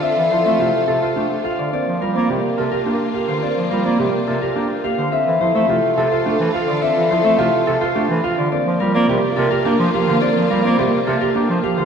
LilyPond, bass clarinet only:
\new Staff \with { instrumentName = "Bass clarinet" } { \clef bass \time 3/4 \key g \dorian \tempo 4 = 106 r16 e16 f16 a16 c16 r16 c16 r16 a16 r8 d16 | r16 f16 g16 bes16 c16 r16 c16 r16 bes16 r8 d16 | r16 f16 g16 bes16 c16 r16 c16 r16 bes16 r8 d16 | r16 e16 f16 a16 c16 r16 c16 r16 a16 e16 r16 d16 |
r16 e16 f16 a16 c16 r16 c16 r16 a16 e16 r16 d16 | r16 f16 g16 bes16 c16 r16 c16 r16 bes16 f16 r16 d16 | r16 f16 g16 bes16 c16 r16 c16 r16 bes16 f16 r16 d16 | }